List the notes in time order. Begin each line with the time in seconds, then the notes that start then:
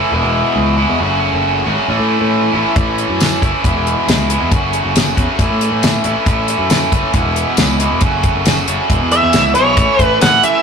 Already playing: A2 E3 A3 C#4 E4
0.12 E1 E2 B2 E3 G#3 B3 E4
0.23 E1
0.56 C#2
0.77 E2 B2 E3 G#3 B3 E4
0.89 E2
0.99 F#1 F#2 C#3 F#3 A3 C#4 F#4
1.33 F#1
1.65 G#1 C#3 F#3 A3 C#4 F#4
1.69 F#2
1.87 A1 A2 E3 A3 C#4 E4
1.99 A2
2.21 A2
2.53 A1 A2 E3 A3 C#4 E4
2.75 A1 A2 E3 A3 C#4 E4, kick, closed hi-hat
2.98 closed hi-hat
3.10 F#2
3.20 snare, closed hi-hat, tambourine
3.41 F#1 A2 E3 A3 C#4 E4, kick, closed hi-hat
3.63 E1 E2 B2 E3 G#3 B3 E4, kick, closed hi-hat
3.75 E1
3.87 closed hi-hat
4.08 C#2, snare, closed hi-hat, tambourine
4.29 E2 B2 E3 G#3 B3 E4, closed hi-hat
4.41 E2
4.51 F#1 F#2 C#3 F#3 A3 C#4 F#4, kick, closed hi-hat
4.73 closed hi-hat
4.84 F#1
4.96 snare, closed hi-hat, tambourine
5.16 E2 C#3 F#3 A3 C#4 F#4, kick, closed hi-hat
5.20 F#2
5.38 A1 A2 E3 A3 C#4, kick, closed hi-hat
5.42 E4
5.50 A2
5.61 closed hi-hat
5.71 A2
5.83 snare, closed hi-hat, tambourine
6.04 A1 E3 A3 C#4 E4, closed hi-hat
6.08 A2
6.26 A1 A2 E3 A3 C#4 E4, kick, closed hi-hat
6.48 closed hi-hat
6.58 F#2
6.70 snare, closed hi-hat, tambourine
6.92 F#1 A2 E3 A3 C#4 E4, kick, closed hi-hat
7.13 E1 E2 B2 E3 G#3 B3, kick, closed hi-hat
7.17 E4
7.24 E1
7.36 closed hi-hat
7.57 C#2, snare, closed hi-hat, tambourine
7.78 E2 B2 E3 G#3 B3 E4, closed hi-hat
7.91 E1
8.01 F#1 F#2 C#3 F#3 A3, kick, closed hi-hat
8.05 C#4 F#4
8.23 kick, closed hi-hat
8.35 F#1
8.46 snare, closed hi-hat, tambourine
8.67 F#1 F#2 C#3 F#3 A3 C#4 F#4, closed hi-hat
8.89 E1 E2 B2 E3 G#3 B3 E4, kick, closed hi-hat
9.02 E2
9.12 E5, closed hi-hat
9.23 E2
9.33 C#2, snare, closed hi-hat, tambourine
9.55 B1 E2 B2 E3 G#3 B3 E4 C#5, closed hi-hat
9.76 A1 A2 E3 A3 C#4, kick, closed hi-hat
9.80 E4
9.99 A1 B4, kick, closed hi-hat
10.21 A1 F#5, snare, closed hi-hat, tambourine
10.43 E5, closed hi-hat